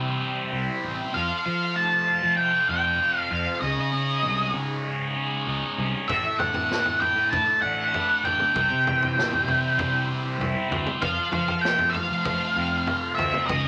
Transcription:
Already playing: distorted electric guitar C3 E3 G3 E4, fingered electric bass C3, transistor combo organ E4 G4 C5
0.21 distorted electric guitar C4
0.52 fingered electric bass C2, distorted electric guitar E4
0.82 fingered electric bass A1, distorted electric guitar C4
1.13 fingered electric bass F2, distorted electric guitar F3, transistor combo organ A4, lead electric guitar F5
1.18 transistor combo organ F4
1.46 distorted electric guitar F3, fingered electric bass F3
1.76 distorted electric guitar A3, lead electric guitar A5
2.07 distorted electric guitar F4
2.23 fingered electric bass F3
2.37 distorted electric guitar A3, lead electric guitar G5
2.69 fingered electric bass F2, distorted electric guitar C4, lead electric guitar G5
3.00 distorted electric guitar F4
3.18 lead electric guitar F5
3.31 fingered electric bass F2, distorted electric guitar C4, lead electric guitar F5
3.61 fingered electric bass C#2, distorted electric guitar C#3, transistor combo organ D#4 G#4 C#5, lead electric guitar D#5
3.77 fingered electric bass C#3
3.93 distorted electric guitar C#3
4.23 fingered electric bass C2, distorted electric guitar G#3
4.53 fingered electric bass C#3, distorted electric guitar D#4
4.84 distorted electric guitar G#3
5.15 distorted electric guitar C#4
5.47 fingered electric bass C#2, distorted electric guitar D#4
5.78 fingered electric bass C2, distorted electric guitar C#4
6.08 fingered electric bass A1, distorted electric guitar A2, transistor combo organ E4 A4 D5, lead electric guitar E5, kick, floor tom
6.39 fingered electric bass A2, distorted electric guitar D3, lead electric guitar F#5, floor tom, mid tom
6.54 floor tom, high conga
6.71 distorted electric guitar A3, snare
6.85 floor tom, high conga
7.01 distorted electric guitar E4, lead electric guitar G5, floor tom
7.15 fingered electric bass A2
7.31 distorted electric guitar A3, lead electric guitar A5, kick, floor tom, low conga
7.62 fingered electric bass A1, distorted electric guitar D4, lead electric guitar F#5
7.93 distorted electric guitar E4, floor tom
8.23 fingered electric bass A1, distorted electric guitar D4, lead electric guitar G5, floor tom, low conga
8.40 mid tom, high conga
8.54 fingered electric bass C2, distorted electric guitar C3, transistor combo organ E4 G4 C5, kick, floor tom
8.70 fingered electric bass C3
8.85 distorted electric guitar E3, floor tom, mid tom
9.02 floor tom, high conga
9.16 fingered electric bass A1, distorted electric guitar G3, snare
9.32 floor tom, high conga
9.47 fingered electric bass C3, distorted electric guitar E4, floor tom, low conga
9.78 distorted electric guitar G3, kick, floor tom, low conga
10.09 distorted electric guitar C4
10.38 fingered electric bass C2, distorted electric guitar E4, floor tom
10.70 fingered electric bass D2, distorted electric guitar C4, floor tom
10.86 mid tom, high conga
11.02 fingered electric bass F2, distorted electric guitar F3, transistor combo organ F4 A4, lead electric guitar F5, kick, floor tom
11.32 fingered electric bass F3, distorted electric guitar F3, floor tom, mid tom
11.48 floor tom
11.61 distorted electric guitar A3, lead electric guitar G5, snare
11.79 floor tom, high conga
11.90 lead electric guitar F5
11.94 distorted electric guitar F4, floor tom, low conga
12.10 fingered electric bass F3
12.25 distorted electric guitar A3, kick, floor tom, low conga
12.56 fingered electric bass F2, distorted electric guitar C4
12.87 distorted electric guitar F4, floor tom
13.15 fingered electric bass D2, distorted electric guitar C4, lead electric guitar E5, floor tom, low conga
13.33 mid tom, high conga
13.46 fingered electric bass C#2, transistor combo organ G#4, lead electric guitar D#5, kick, floor tom
13.51 distorted electric guitar C#3, transistor combo organ D#4 C#5

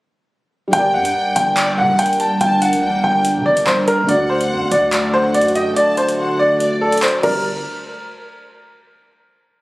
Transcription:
0.68 felt piano G3 G4
0.73 808-style bass G1, analog synth pad G3 D4 A#4, felt piano A#4, grand piano G5, violin section G5, closed hi-hat
0.78 felt piano D5
0.94 808-style bass G2, grand piano F#5
1.05 closed hi-hat
1.36 808-style bass G1, grand piano G5, closed hi-hat
1.57 violin section D5, clap, closed hi-hat
1.78 808-style bass D3, grand piano F#5, violin section F#5
1.89 808-style bass G1
1.99 grand piano G5, closed hi-hat
2.06 closed hi-hat
2.13 closed hi-hat
2.20 violin section G5, grand piano A5, closed hi-hat
2.41 808-style bass G1, grand piano G5, violin section A5, closed hi-hat
2.62 grand piano F#5, closed hi-hat
2.73 808-style bass D2, closed hi-hat
2.83 violin section G5
2.88 808-style bass G1
3.04 808-style bass G1, grand piano G5
3.25 closed hi-hat
3.36 808-style bass D3
3.46 808-style bass G1, grand piano D5
3.57 closed hi-hat
3.67 808-style bass G1, grand piano C5, clap
3.88 grand piano A#4, closed hi-hat
4.03 felt piano D3 A3
4.09 808-style bass D2, analog synth pad D3 A3 F#4, felt piano F#4, grand piano D5, violin section F#5, closed hi-hat
4.14 felt piano D5
4.30 grand piano C5
4.41 closed hi-hat
4.51 808-style bass F#2
4.62 808-style bass D2
4.71 808-style bass D2, grand piano D5, closed hi-hat
4.92 violin section D5, clap, closed hi-hat
5.14 grand piano C5, violin section F#5
5.34 808-style bass F#2, grand piano D5, closed hi-hat
5.41 closed hi-hat
5.48 closed hi-hat
5.55 grand piano D#5, violin section G5, closed hi-hat
5.76 grand piano D5, violin section A5, closed hi-hat
5.97 grand piano C5, closed hi-hat
6.09 closed hi-hat
6.18 violin section F#5
6.39 grand piano D5
6.60 violin section D5, closed hi-hat
6.81 grand piano A4, violin section D5
6.92 closed hi-hat
6.97 closed hi-hat
7.02 grand piano C5, clap, closed hi-hat
7.08 closed hi-hat
7.23 808-style bass G1, felt piano G3 G4 A#4 D5, grand piano A#4, violin section D5, crash

